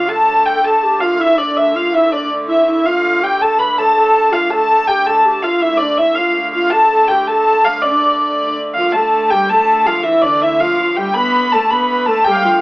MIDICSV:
0, 0, Header, 1, 5, 480
1, 0, Start_track
1, 0, Tempo, 369004
1, 112, Time_signature, 6, 3, 24, 8
1, 16407, End_track
2, 0, Start_track
2, 0, Title_t, "Hurdy-gurdy"
2, 0, Program_c, 0, 110
2, 117, Note_on_c, 0, 81, 85
2, 598, Note_off_c, 0, 81, 0
2, 598, Note_on_c, 0, 79, 79
2, 839, Note_off_c, 0, 79, 0
2, 839, Note_on_c, 0, 81, 82
2, 1306, Note_on_c, 0, 77, 78
2, 1315, Note_off_c, 0, 81, 0
2, 1575, Note_off_c, 0, 77, 0
2, 1575, Note_on_c, 0, 76, 90
2, 1797, Note_off_c, 0, 76, 0
2, 1797, Note_on_c, 0, 74, 79
2, 2039, Note_off_c, 0, 74, 0
2, 2039, Note_on_c, 0, 76, 82
2, 2291, Note_off_c, 0, 76, 0
2, 2291, Note_on_c, 0, 77, 85
2, 2524, Note_off_c, 0, 77, 0
2, 2524, Note_on_c, 0, 76, 78
2, 2762, Note_off_c, 0, 76, 0
2, 2762, Note_on_c, 0, 74, 76
2, 2981, Note_off_c, 0, 74, 0
2, 3244, Note_on_c, 0, 76, 84
2, 3492, Note_off_c, 0, 76, 0
2, 3492, Note_on_c, 0, 76, 81
2, 3712, Note_off_c, 0, 76, 0
2, 3712, Note_on_c, 0, 77, 82
2, 4207, Note_off_c, 0, 77, 0
2, 4207, Note_on_c, 0, 79, 83
2, 4443, Note_off_c, 0, 79, 0
2, 4443, Note_on_c, 0, 81, 99
2, 4671, Note_off_c, 0, 81, 0
2, 4671, Note_on_c, 0, 83, 88
2, 4920, Note_off_c, 0, 83, 0
2, 4920, Note_on_c, 0, 81, 90
2, 5158, Note_off_c, 0, 81, 0
2, 5158, Note_on_c, 0, 81, 89
2, 5628, Note_off_c, 0, 81, 0
2, 5628, Note_on_c, 0, 77, 82
2, 5856, Note_on_c, 0, 81, 101
2, 5870, Note_off_c, 0, 77, 0
2, 6341, Note_off_c, 0, 81, 0
2, 6341, Note_on_c, 0, 79, 87
2, 6589, Note_off_c, 0, 79, 0
2, 6589, Note_on_c, 0, 81, 85
2, 7059, Note_on_c, 0, 77, 76
2, 7071, Note_off_c, 0, 81, 0
2, 7304, Note_on_c, 0, 76, 89
2, 7306, Note_off_c, 0, 77, 0
2, 7508, Note_on_c, 0, 74, 76
2, 7531, Note_off_c, 0, 76, 0
2, 7773, Note_off_c, 0, 74, 0
2, 7773, Note_on_c, 0, 76, 79
2, 7998, Note_on_c, 0, 77, 77
2, 8023, Note_off_c, 0, 76, 0
2, 8487, Note_off_c, 0, 77, 0
2, 8487, Note_on_c, 0, 77, 82
2, 8718, Note_on_c, 0, 81, 94
2, 8722, Note_off_c, 0, 77, 0
2, 9209, Note_on_c, 0, 79, 78
2, 9215, Note_off_c, 0, 81, 0
2, 9460, Note_off_c, 0, 79, 0
2, 9460, Note_on_c, 0, 81, 84
2, 9948, Note_off_c, 0, 81, 0
2, 9948, Note_on_c, 0, 77, 75
2, 10174, Note_on_c, 0, 74, 74
2, 10190, Note_off_c, 0, 77, 0
2, 11143, Note_off_c, 0, 74, 0
2, 11374, Note_on_c, 0, 77, 69
2, 11606, Note_off_c, 0, 77, 0
2, 11606, Note_on_c, 0, 81, 93
2, 12101, Note_off_c, 0, 81, 0
2, 12101, Note_on_c, 0, 79, 80
2, 12350, Note_off_c, 0, 79, 0
2, 12350, Note_on_c, 0, 81, 84
2, 12836, Note_off_c, 0, 81, 0
2, 12836, Note_on_c, 0, 77, 78
2, 13048, Note_on_c, 0, 76, 83
2, 13074, Note_off_c, 0, 77, 0
2, 13293, Note_on_c, 0, 74, 73
2, 13299, Note_off_c, 0, 76, 0
2, 13551, Note_off_c, 0, 74, 0
2, 13551, Note_on_c, 0, 76, 77
2, 13791, Note_off_c, 0, 76, 0
2, 13791, Note_on_c, 0, 77, 79
2, 14267, Note_on_c, 0, 79, 89
2, 14270, Note_off_c, 0, 77, 0
2, 14493, Note_off_c, 0, 79, 0
2, 14493, Note_on_c, 0, 83, 105
2, 14987, Note_off_c, 0, 83, 0
2, 14987, Note_on_c, 0, 81, 91
2, 15227, Note_on_c, 0, 83, 89
2, 15228, Note_off_c, 0, 81, 0
2, 15688, Note_off_c, 0, 83, 0
2, 15688, Note_on_c, 0, 81, 86
2, 15926, Note_off_c, 0, 81, 0
2, 15926, Note_on_c, 0, 79, 98
2, 16022, Note_on_c, 0, 77, 83
2, 16059, Note_off_c, 0, 79, 0
2, 16059, Note_on_c, 0, 79, 88
2, 16164, Note_off_c, 0, 77, 0
2, 16164, Note_on_c, 0, 77, 86
2, 16183, Note_off_c, 0, 79, 0
2, 16407, Note_off_c, 0, 77, 0
2, 16407, End_track
3, 0, Start_track
3, 0, Title_t, "Shakuhachi"
3, 0, Program_c, 1, 77
3, 108, Note_on_c, 1, 69, 80
3, 830, Note_off_c, 1, 69, 0
3, 840, Note_on_c, 1, 69, 75
3, 1085, Note_on_c, 1, 67, 71
3, 1104, Note_off_c, 1, 69, 0
3, 1325, Note_on_c, 1, 65, 71
3, 1344, Note_off_c, 1, 67, 0
3, 1550, Note_on_c, 1, 64, 76
3, 1569, Note_off_c, 1, 65, 0
3, 1783, Note_on_c, 1, 62, 68
3, 1803, Note_off_c, 1, 64, 0
3, 2270, Note_on_c, 1, 65, 73
3, 2289, Note_off_c, 1, 62, 0
3, 2509, Note_on_c, 1, 64, 74
3, 2528, Note_off_c, 1, 65, 0
3, 2750, Note_on_c, 1, 62, 67
3, 2769, Note_off_c, 1, 64, 0
3, 2991, Note_off_c, 1, 62, 0
3, 3218, Note_on_c, 1, 64, 70
3, 3448, Note_off_c, 1, 64, 0
3, 3461, Note_on_c, 1, 64, 74
3, 3722, Note_on_c, 1, 65, 79
3, 3742, Note_off_c, 1, 64, 0
3, 4197, Note_on_c, 1, 67, 73
3, 4217, Note_off_c, 1, 65, 0
3, 4435, Note_on_c, 1, 69, 80
3, 4454, Note_off_c, 1, 67, 0
3, 4672, Note_on_c, 1, 71, 75
3, 4691, Note_off_c, 1, 69, 0
3, 4925, Note_on_c, 1, 69, 80
3, 4944, Note_off_c, 1, 71, 0
3, 5151, Note_off_c, 1, 69, 0
3, 5158, Note_on_c, 1, 69, 80
3, 5618, Note_on_c, 1, 65, 71
3, 5637, Note_off_c, 1, 69, 0
3, 5863, Note_on_c, 1, 69, 79
3, 5883, Note_off_c, 1, 65, 0
3, 6108, Note_off_c, 1, 69, 0
3, 6121, Note_on_c, 1, 69, 75
3, 6351, Note_on_c, 1, 67, 73
3, 6371, Note_off_c, 1, 69, 0
3, 6596, Note_on_c, 1, 69, 80
3, 6615, Note_off_c, 1, 67, 0
3, 6836, Note_on_c, 1, 67, 72
3, 6856, Note_off_c, 1, 69, 0
3, 7070, Note_on_c, 1, 65, 73
3, 7090, Note_off_c, 1, 67, 0
3, 7309, Note_on_c, 1, 64, 78
3, 7329, Note_off_c, 1, 65, 0
3, 7568, Note_on_c, 1, 62, 69
3, 7587, Note_off_c, 1, 64, 0
3, 7789, Note_on_c, 1, 64, 69
3, 7809, Note_off_c, 1, 62, 0
3, 8038, Note_on_c, 1, 65, 73
3, 8057, Note_off_c, 1, 64, 0
3, 8275, Note_off_c, 1, 65, 0
3, 8509, Note_on_c, 1, 65, 73
3, 8750, Note_on_c, 1, 69, 85
3, 8770, Note_off_c, 1, 65, 0
3, 8992, Note_off_c, 1, 69, 0
3, 9002, Note_on_c, 1, 69, 74
3, 9221, Note_off_c, 1, 69, 0
3, 9228, Note_on_c, 1, 67, 69
3, 9475, Note_on_c, 1, 69, 72
3, 9495, Note_off_c, 1, 67, 0
3, 9870, Note_off_c, 1, 69, 0
3, 10193, Note_on_c, 1, 62, 66
3, 11153, Note_off_c, 1, 62, 0
3, 11412, Note_on_c, 1, 65, 66
3, 11658, Note_on_c, 1, 69, 76
3, 11677, Note_off_c, 1, 65, 0
3, 12117, Note_on_c, 1, 67, 72
3, 12137, Note_off_c, 1, 69, 0
3, 12366, Note_on_c, 1, 69, 76
3, 12385, Note_off_c, 1, 67, 0
3, 12835, Note_on_c, 1, 65, 67
3, 12855, Note_off_c, 1, 69, 0
3, 13071, Note_on_c, 1, 64, 74
3, 13091, Note_off_c, 1, 65, 0
3, 13328, Note_on_c, 1, 62, 67
3, 13347, Note_off_c, 1, 64, 0
3, 13563, Note_on_c, 1, 64, 71
3, 13583, Note_off_c, 1, 62, 0
3, 13793, Note_on_c, 1, 65, 74
3, 13813, Note_off_c, 1, 64, 0
3, 14032, Note_off_c, 1, 65, 0
3, 14061, Note_on_c, 1, 65, 70
3, 14290, Note_on_c, 1, 67, 76
3, 14310, Note_off_c, 1, 65, 0
3, 14521, Note_on_c, 1, 71, 87
3, 14540, Note_off_c, 1, 67, 0
3, 15010, Note_on_c, 1, 69, 74
3, 15030, Note_off_c, 1, 71, 0
3, 15245, Note_on_c, 1, 71, 83
3, 15265, Note_off_c, 1, 69, 0
3, 15477, Note_off_c, 1, 71, 0
3, 15486, Note_on_c, 1, 71, 76
3, 15716, Note_on_c, 1, 69, 83
3, 15735, Note_off_c, 1, 71, 0
3, 15960, Note_on_c, 1, 67, 81
3, 15980, Note_off_c, 1, 69, 0
3, 16190, Note_on_c, 1, 65, 69
3, 16209, Note_off_c, 1, 67, 0
3, 16407, Note_off_c, 1, 65, 0
3, 16407, End_track
4, 0, Start_track
4, 0, Title_t, "Viola da gamba"
4, 0, Program_c, 2, 42
4, 11389, Note_on_c, 2, 53, 69
4, 11618, Note_on_c, 2, 57, 74
4, 11637, Note_off_c, 2, 53, 0
4, 12115, Note_on_c, 2, 55, 73
4, 12135, Note_off_c, 2, 57, 0
4, 12359, Note_on_c, 2, 57, 75
4, 12378, Note_off_c, 2, 55, 0
4, 12820, Note_on_c, 2, 53, 72
4, 12840, Note_off_c, 2, 57, 0
4, 13056, Note_on_c, 2, 52, 75
4, 13076, Note_off_c, 2, 53, 0
4, 13292, Note_on_c, 2, 50, 74
4, 13312, Note_off_c, 2, 52, 0
4, 13785, Note_on_c, 2, 53, 74
4, 13804, Note_off_c, 2, 50, 0
4, 14256, Note_on_c, 2, 55, 72
4, 14275, Note_off_c, 2, 53, 0
4, 14503, Note_off_c, 2, 55, 0
4, 14510, Note_on_c, 2, 59, 85
4, 15015, Note_on_c, 2, 57, 79
4, 15035, Note_off_c, 2, 59, 0
4, 15237, Note_on_c, 2, 59, 82
4, 15257, Note_off_c, 2, 57, 0
4, 15708, Note_on_c, 2, 57, 82
4, 15727, Note_off_c, 2, 59, 0
4, 15941, Note_off_c, 2, 57, 0
4, 15949, Note_on_c, 2, 55, 78
4, 16060, Note_off_c, 2, 55, 0
4, 16095, Note_on_c, 2, 55, 70
4, 16209, Note_on_c, 2, 53, 70
4, 16229, Note_off_c, 2, 55, 0
4, 16407, Note_off_c, 2, 53, 0
4, 16407, End_track
5, 0, Start_track
5, 0, Title_t, "Hurdy-gurdy"
5, 0, Program_c, 3, 110
5, 100, Note_on_c, 3, 50, 66
5, 108, Note_on_c, 3, 57, 67
5, 5868, Note_off_c, 3, 57, 0
5, 5868, Note_on_c, 3, 57, 65
5, 5874, Note_off_c, 3, 50, 0
5, 5874, Note_on_c, 3, 50, 70
5, 11641, Note_off_c, 3, 57, 0
5, 11641, Note_on_c, 3, 57, 71
5, 11644, Note_off_c, 3, 50, 0
5, 11644, Note_on_c, 3, 50, 68
5, 16407, Note_off_c, 3, 50, 0
5, 16407, Note_off_c, 3, 57, 0
5, 16407, End_track
0, 0, End_of_file